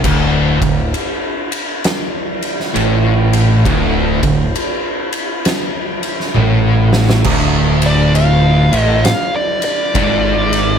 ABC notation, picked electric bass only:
X:1
M:4/4
L:1/8
Q:"Swing" 1/4=67
K:Dm
V:1 name="Picked electric bass" clef=bass
D,,, D,,, z4 A,,,2 | D,,, D,,, z4 A,,,2 | D,,,3 A,,, z2 ^G,,,2 |]